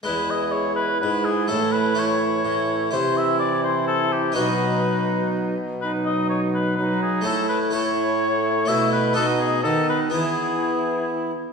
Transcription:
0.03 E2 G#3 E4 B4
0.30 D#5
0.52 C#5
0.76 B4
1.00 G#2 G#3 E4 B4
1.25 G#4
1.48 A2 E3 A3 E4 A4
1.72 B4
1.95 E3 A3 E4
1.99 C#5
2.45 A2
2.91 C3 E3 E4 C5
3.17 E5
3.39 D5
3.64 C5
3.87 A4
4.12 G4
4.32 B2 B3 D#4 F#4 B4
4.36 B2 F#3
5.81 F#3 D#4 B4
6.06 D#5
6.29 C#5
6.54 B4
6.77 F#3 D#4 B4
7.02 G#4
7.21 A2 A3 E4 A4
7.25 A2 A3 E4 A4
7.49 B4
7.71 A3 E4 A4 C#5
7.75 E4
8.65 B2 A3 E4 F#4 E5
8.92 B4
9.13 B2 B3 D#4 E4 F#4 A4
9.18 B3 D#4
9.39 G#4
9.63 D#3 B3 D#4 A4
9.89 B4
10.10 E3 B3 E4 G#4

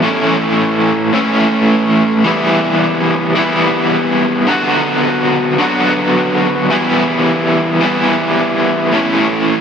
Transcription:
0.02 A2 E3 A3 C#4 E4
1.13 A2 E3 A3 C#4 E4
2.24 E3 G3 B3 E4
3.35 E3 G3 B3 E4
4.47 D3 F#3 B3
4.51 F#4
5.58 D3 F#3 B3 F#4
6.70 E3 G3 B3 E4
7.81 E3 G3 B3 E4
8.92 A2 E3 A3 C#4 E4

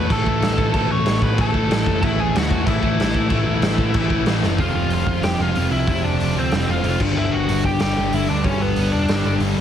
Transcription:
Already playing: A2 E3 A3 B5
0.10 A1 A2 E3 A3 A4 A5, kick, crash
0.24 A1 E3 A3, kick
0.29 A2
0.41 A1 A2 E3, snare, crash
0.45 A3
0.58 A2, kick
0.72 A1 A2 E3 A3 A4, kick, crash
0.77 A5
0.91 A1 C#5 C#6
1.06 A1, snare, crash
1.22 A2 B4 B5, kick
1.38 A1 A2 E3 A3 A4 A5, kick, crash
1.53 A2 E3 A3, kick
1.69 A1 A2 E3, snare, crash
1.73 A3
1.86 F#1, kick
2.01 A1 A2 E3 A3 E4, kick, crash
2.06 E5
2.19 G#4 G#5
2.35 D2 F#4 F#5, snare, crash
2.51 E2, kick
2.66 A1 A2 E3 E4 E5, kick, crash
2.70 A3
2.81 A1 E3 A3, kick
2.85 A2
2.97 A1 A2 E3 A3, snare, crash
3.14 A2, kick
3.28 A1 A2 E3 A3, kick, crash
3.46 A1
3.62 A1, snare, crash
3.78 A2, kick
3.94 A1 A2 E3, kick, crash
3.98 A3
4.09 E3 A3, kick
4.13 A2
4.25 A1 A2 E3, snare, crash
4.29 A3
4.42 F#1, snare
4.58 F1 F2 C3 F4 F5, kick, open hi-hat
4.62 F3
4.74 F1
4.90 F1, open hi-hat
5.05 F1 C3 F3, kick
5.09 F2
5.22 F1 G4 G5, snare, open hi-hat
5.39 F1 F2 C3 F3 F4 F5
5.54 F1 F2 C3, open hi-hat
5.59 F3
5.71 C2 E4 E5
5.86 F1 F2 C3, kick, open hi-hat
5.91 F3
6.04 F1 D4 D5
6.20 F1, open hi-hat
6.36 D2 F2 C3 F3 C5
6.40 C4
6.51 F1, snare, open hi-hat
6.56 C4 C5
6.67 F1 F2 C3 F3 F4 F5
6.83 F1 F2 C3 F3, open hi-hat
6.99 G1 G2 D3 G3, kick, crash
7.17 G1 E4 E5
7.32 G1 F#4 F#5
7.47 G1 G2 D3 G3, open hi-hat
7.64 G1 G4 G5, kick
7.79 G1 G2 D3 G3 G4 G5, snare, open hi-hat
7.94 G1 G2 D3 G3
8.12 G1 E4 E5, open hi-hat
8.26 D2 G2 D3 D4 D5
8.30 G3
8.44 G1 C#4 C#5, kick, open hi-hat
8.61 G1 B3 B4
8.74 G1 G2 D3 G3, open hi-hat
8.92 E1 D4 D5
9.08 G1 G2 D3, snare, open hi-hat
9.12 G3
9.23 G1 D3 G3
9.27 G2
9.40 G1, open hi-hat
9.58 G1

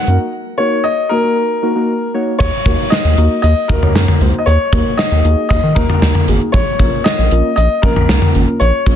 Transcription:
Already playing: F#5
0.07 F#2 A#3 D#4 F#4 A#4, closed hi-hat
0.58 A#3 D#4 F#4 A#4 C#5
0.84 D#5
1.09 A#3 D#4 F#4 A#4
1.24 A#3 D#4 F#4 A#4
1.63 A#3 D#4 F#4 A#4
1.75 A#3 D#4 F#4 A#4
2.14 A#3 D#4 F#4 C#5
2.39 D#2 C#5, kick, crash
2.66 D#2 A#3 D#4 F#4 A#4, kick, closed hi-hat
2.90 D#5, snare, closed hi-hat
3.05 D#2
3.18 D#2 A#3 D#4 F#4 A#4, closed hi-hat
3.42 D#2 D#5, closed hi-hat
3.68 D#2 A#3 D#4 F#4 A#4, kick, closed hi-hat
3.82 D#2 A#3 D#4 F#4 C#5, mid tom
3.95 F#2, snare, closed hi-hat
4.08 mid tom
4.21 C#2 A#3 D#4 F#4 C5, closed hi-hat
4.39 D#5
4.46 D#2 C#5, closed hi-hat
4.73 D#2 A#3 D#4 F#4 A#4, kick, closed hi-hat
4.97 D#5, snare, closed hi-hat
5.12 D#2
5.24 D#2 A#3 D#4 F#4 G#4, closed hi-hat
5.49 D#2 D#5, kick, closed hi-hat
5.63 D#3
5.75 D#2 A#3 D#4 F#4 A#4, kick, closed hi-hat
5.89 A#3 D#4 F#4 A#4, mid tom
6.02 D#2, snare, closed hi-hat
6.15 mid tom
6.28 G#1 A#3 D#4 F#4 G#4, closed hi-hat
6.52 A#1 C#5, kick, closed hi-hat
6.79 A#1 A#3 C#4 F4 A#4, kick, closed hi-hat
7.04 D#5, snare, closed hi-hat
7.19 A#1
7.31 A#1 A#3 C#4 F4 A#4, closed hi-hat
7.56 A#1 D#5, closed hi-hat
7.82 A#1 A#3 C#4 F4 A#4, kick, closed hi-hat
7.96 A#1 A#3 C#4 F4 A#4, mid tom
8.09 C#2, snare, closed hi-hat
8.22 mid tom
8.35 G#1 A#3 C#4 F4 A#4, closed hi-hat
8.60 A#1 C#5, closed hi-hat
8.86 A#1 A#3 C#4 F4 A#4, kick, closed hi-hat

